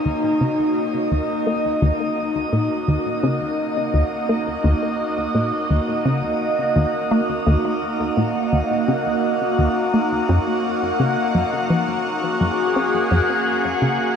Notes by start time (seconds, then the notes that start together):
Already playing: A#3 C#4 D#4 F#4 C#5
0.05 D#2
0.41 C#3
1.02 D#5
1.11 D#2
1.46 A#3
1.82 D#2
2.12 F#5
2.52 A#2
2.88 D#2
3.23 C#3
3.93 D#2
4.29 A#3
4.64 D#2
5.35 A#2
5.70 D#2
6.05 C#3
6.76 D#2
7.11 A#3
7.46 D#2
8.17 A#2
8.52 D#2
8.88 C#3
9.58 D#2
9.94 A#3
10.29 F#2
10.99 C#3
11.34 F#2
11.70 F3
12.03 G#4
12.41 F#2
12.76 C#4
13.11 F#2
13.82 C#3